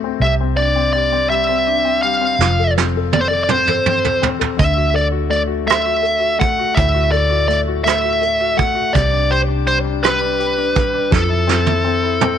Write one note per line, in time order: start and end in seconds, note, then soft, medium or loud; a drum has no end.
0.00 0.17 D2 medium
0.00 0.17 A2 medium
0.00 0.23 A3 soft
0.00 0.04 C4 soft
0.00 0.23 F#4 soft
0.04 0.21 C4 soft
0.20 2.35 C2 medium
0.20 2.36 C3 medium
0.20 0.32 E5 medium
0.41 0.74 C4 soft
0.57 1.65 D4 soft
0.57 0.92 D5 medium
0.76 1.11 C4 soft
0.93 1.29 G3 soft
0.93 1.29 D5 medium
1.12 1.48 C4 soft
1.30 2.02 G3 medium
1.30 2.02 E5 medium
1.49 1.83 C4 soft
1.67 2.37 D4 soft
1.85 2.20 C4 soft
2.03 2.39 G3 soft
2.03 2.72 F5 medium
2.21 2.39 C4 soft
2.39 4.55 F1 medium
2.39 4.56 F3 medium
2.39 snare soft
2.59 2.95 A4 soft
2.78 3.12 C4 soft
2.78 snare medium
2.97 3.29 A4 soft
3.13 3.48 C4 soft
3.13 3.20 D5 medium
3.13 high tom medium
3.21 3.27 C5 medium
3.28 3.67 A4 soft
3.28 3.42 D5 medium
3.44 3.50 D5 medium
3.49 3.86 C4 soft
3.49 4.28 C5 medium
3.49 mid tom medium
3.67 4.03 A4 soft
3.67 mid tom medium
3.86 4.21 C4 soft
3.86 mid tom medium
4.04 4.38 A4 soft
4.04 floor tom medium
4.22 4.58 C4 soft
4.22 floor tom medium
4.39 4.58 A4 soft
4.39 floor tom medium
4.57 6.74 D2 medium
4.57 6.73 D3 medium
4.57 4.93 E5 medium
4.57 kick medium
4.57 closed hi-hat medium
4.76 5.10 F#4 soft
4.94 6.01 A4 soft
4.94 5.06 D5 medium
4.94 closed hi-hat soft
5.12 5.46 F#4 soft
5.30 5.65 A3 soft
5.30 5.41 D5 medium
5.30 closed hi-hat soft
5.47 5.84 F#4 soft
5.66 6.37 A3 medium
5.66 6.37 E5 medium
5.66 closed hi-hat medium
5.70 cross-stick medium
5.86 6.18 F#4 soft
6.03 7.11 A4 soft
6.03 closed hi-hat soft
6.19 6.58 F#4 soft
6.39 7.47 A3 soft
6.39 6.78 F#5 medium
6.39 kick medium
6.39 closed hi-hat soft
6.59 6.93 F#4 soft
6.75 8.91 D2 medium
6.75 8.91 A2 medium
6.75 7.10 E5 medium
6.75 kick medium
6.75 closed hi-hat medium
6.94 7.28 F#4 soft
7.12 8.20 A4 soft
7.12 7.47 D5 medium
7.12 closed hi-hat soft
7.30 7.66 F#4 soft
7.48 7.84 A3 soft
7.48 7.58 D5 medium
7.48 closed hi-hat medium
7.68 8.02 F#4 soft
7.84 8.55 A3 medium
7.84 8.60 E5 medium
7.84 cross-stick medium
7.84 closed hi-hat medium
8.04 8.39 F#4 soft
8.22 8.92 A4 soft
8.22 closed hi-hat soft
8.40 8.73 F#4 soft
8.57 8.93 A3 soft
8.57 8.95 F#5 medium
8.57 kick medium
8.57 closed hi-hat medium
8.75 8.93 F#4 soft
8.93 11.08 C2 medium
8.93 11.08 C3 medium
8.93 9.31 D5 medium
8.93 kick medium
8.93 closed hi-hat medium
9.12 9.47 D4 soft
9.30 10.38 G4 medium
9.30 9.41 C5 medium
9.30 closed hi-hat soft
9.48 9.83 D4 soft
9.66 10.02 G3 soft
9.66 9.77 C5 medium
9.66 closed hi-hat soft
9.85 10.19 D4 medium
10.03 10.74 G3 medium
10.03 11.13 B4 medium
10.03 cross-stick loud
10.03 closed hi-hat medium
10.20 10.56 D4 soft
10.39 11.10 G4 medium
10.39 closed hi-hat soft
10.58 10.92 D4 soft
10.75 11.11 G3 medium
10.75 kick medium
10.75 closed hi-hat medium
10.94 11.12 D4 soft
11.11 12.38 F2 medium
11.11 12.38 F3 medium
11.11 12.38 A4 medium
11.11 kick loud
11.11 snare medium
11.29 11.64 E4 soft
11.47 11.83 C4 medium
11.47 snare medium
11.66 12.02 E4 soft
11.66 high tom soft
11.85 12.21 C4 soft
12.03 12.38 E4 medium
12.21 12.38 C4 medium
12.21 mid tom medium